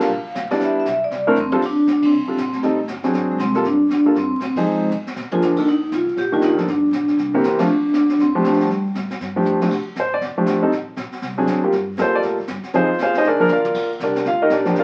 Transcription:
0.00 F1 F5, snare, ride
0.09 A#1, brush sweep
0.25 muted upright bass stroke
0.35 D2, snare, hi-hat pedal
0.43 A#1
0.50 G1 G3 B3 D4 E4 D5, snare
0.60 E2 E5, brush sweep, snare
0.80 E5
0.85 B1, snare, hi-hat pedal
1.04 D5
1.10 C2, brush sweep, snare
1.27 A3 C4 D4 E4 A#4
1.35 E2, floor tom, hi-hat pedal
1.40 C4
1.52 G3 C4 D4 F4 A4, floor tom
1.62 brush sweep, kick, snare, crash
1.66 D4
1.86 D2, snare, hi-hat pedal
1.92 D4
2.02 C4, kick, ride
2.11 C2, brush sweep
2.27 G3 D4 F4 A4, muted upright bass stroke
2.37 A#1, snare, hi-hat pedal
2.41 C4
2.53 A3, snare
2.62 A1 G3 C4 D#4 A4, brush sweep, snare
2.88 G1, snare, hi-hat pedal
3.03 F#3 C4 D4 G#4, snare
3.13 G#1, brush sweep, snare
3.32 G#3
3.38 C2 C4, snare, hi-hat pedal
3.54 G3 A#3 F4 A4, kick, snare
3.64 G2 D4, brush sweep, snare
3.89 F2 D4, snare, hi-hat pedal
4.06 G3 A#3 F4 A4
4.14 G2 C4, brush sweep, snare
4.40 A2, snare, hi-hat pedal
4.44 C4
4.56 F3 C4 D#4 G#4, kick, ride
4.60 G#3
4.65 F2, brush sweep
4.90 G#2, hi-hat pedal, mid tom
5.07 snare
5.16 A#2, snare
5.31 F3 A#3 D4 F4 G#4, floor tom
5.40 F2 D4, snare, hi-hat pedal
5.56 D#3 A#3 D4 A4, kick, crash
5.66 D#2 D#4, brush sweep, snare
5.91 C2 F4, snare, hi-hat pedal
6.07 kick
6.16 A#1 G4, brush sweep, snare
6.32 D#3 A#3 D4 F4 G4
6.41 A1 D#4, snare, hi-hat pedal
6.57 F3 A#3 D4 A4, snare
6.66 G1, brush sweep, snare
6.70 D4
6.91 A#1, snare, hi-hat pedal
7.08 snare
7.17 C2, brush sweep, snare
7.34 E3 A#3 C4 G4
7.42 E2 C4, snare, hi-hat pedal
7.59 F3 A3 D4 F4, snare, ride
7.69 brush sweep
7.83 muted upright bass stroke
7.93 D2 D4, snare, hi-hat pedal
8.09 snare
8.19 E2 C4, brush sweep, snare
8.35 F3 A3 D4 G4
8.44 D2 D4, snare, hi-hat pedal
8.53 snare
8.60 G3, snare
8.69 F2, brush sweep, snare
8.94 A2, snare, hi-hat pedal
9.10 snare
9.20 G2, brush sweep, snare
9.36 F3 A3 D4 G4
9.45 F2, hi-hat pedal
9.61 F3 A3 D4 G4, muted upright bass stroke, snare
9.70 F1, brush sweep, kick, snare, crash
9.86 muted upright bass stroke
9.96 A1, snare, hi-hat pedal
10.00 C5
10.14 D5
10.21 G1, brush sweep, snare
10.35 F3 A3 D4 G4, muted upright bass stroke
10.46 G#1, snare, hi-hat pedal
10.62 G3 C4 D#4 A4
10.71 A1, brush sweep, snare
10.96 A#1, snare, hi-hat pedal
11.12 muted upright bass stroke, snare
11.22 C2, brush sweep, snare
11.38 F#3 C4 D4 G#4
11.47 D2, snare, hi-hat pedal
11.63 G3 A#3 F4 G4
11.72 G2, brush sweep, snare
11.97 F2 G3 A#3 F4 A4, snare, hi-hat pedal
12.01 C5
12.13 D5, muted upright bass stroke
12.22 A2, brush sweep, snare
12.38 kick
12.48 G2, snare, hi-hat pedal
12.63 snare
12.73 F2 F3 C4 D#4 F4 G#4 C5, brush sweep, snare
12.99 D#2 F4 G#4 C5 F5, snare, hi-hat pedal
13.14 D#4 D#5, snare
13.18 G#4 C5
13.24 D2 D4 G#4 A#4 D5, brush sweep, snare
13.39 F3 A#3 D4 A#4, muted upright bass stroke
13.49 E2 D5, hi-hat pedal, mid tom
13.53 F4 A#4 F5
13.65 mid tom
13.74 D#2, brush sweep, kick, snare, crash
14.00 C2 D4 A#4 D5, snare, hi-hat pedal
14.04 G4
14.15 snare
14.24 D2 F4 F5, brush sweep, snare
14.42 D#4 G4 A#4 D#5
14.50 A#1 D4 G4 A#4 D5, snare, hi-hat pedal
14.65 F3 A#3 D4 G4, snare
14.75 G1 F5, brush sweep, snare
14.80 F4 A#4 D5

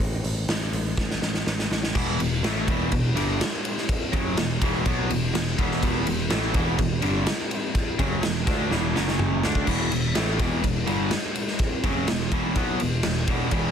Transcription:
0.00 A1, kick, open hi-hat
0.24 A1, open hi-hat
0.48 A1, snare, open hi-hat
0.72 A1, open hi-hat
0.97 A1, kick, snare
1.11 snare
1.22 A1, snare
1.34 snare
1.47 A1, snare
1.59 snare
1.71 A1, snare
1.83 snare
1.95 E1 E2 B2 E3, kick, crash
2.19 E1 E2 B2, ride
2.43 A1 A2 E3 A3, snare, ride
2.68 E1 E2 B2 E3, kick, ride
2.92 E1 E2 B2, kick, ride
3.15 G1 G2 D3 G3, ride
3.41 snare, ride
3.65 ride
3.78 snare
3.89 kick, ride
4.13 F#1 F#2 C#3 F#3, kick, ride
4.37 E1 E2 B2, snare, ride
4.62 E1 E2 B2 E3, kick, ride
4.86 B1 B2 F#3 B3, kick, ride
5.09 E1 E2 B2, ride
5.34 E1 E2 B2, snare, ride
5.58 E1 E2 B2 E3, kick, ride
5.71 snare
5.82 E1 E2 B2 E3, kick, ride
6.07 E1 E2 B2, ride
6.30 A1 A2 E3 A3, snare, ride
6.54 E1 E2 B2 E3, kick, ride
6.79 E1 E2 B2, kick, ride
7.02 G1 G2 D3 G3, ride
7.26 snare, ride
7.51 ride
7.75 kick, ride
7.99 F#1 F#2 C#3 F#3, kick, ride
8.22 E1 E2 B2, snare, ride
8.47 D2 D3 A3 D4, kick, snare, ride
8.71 E1 E2 B2 E3, snare
8.95 F#1 F#2 C#3 F#3, snare
9.08 snare
9.19 mid tom
9.43 D2 D3 A3 D4, snare
9.55 kick
9.67 E1 E2 B2 E3, kick, crash
9.91 E1 E2 B2, ride
10.15 A1 A2 E3 A3, snare, ride
10.39 E1 E2 B2 E3, kick, snare, ride
10.63 E1 E2 B2, kick, ride
10.87 G1 G2 D3 G3, ride
11.11 snare, ride
11.35 ride
11.48 snare
11.59 kick, ride
11.84 F#1 F#2 C#3 F#3, kick, ride
12.08 E1 E2 B2, snare, ride
12.32 E1 E2 B2 E3, kick, ride
12.55 B1 B2 F#3 B3, kick, ride
12.80 E1 E2 B2, ride
13.03 E1 E2 B2, snare, ride
13.28 E1 E2 B2 E3, kick, ride
13.51 E1 E2 B2 E3, kick, ride

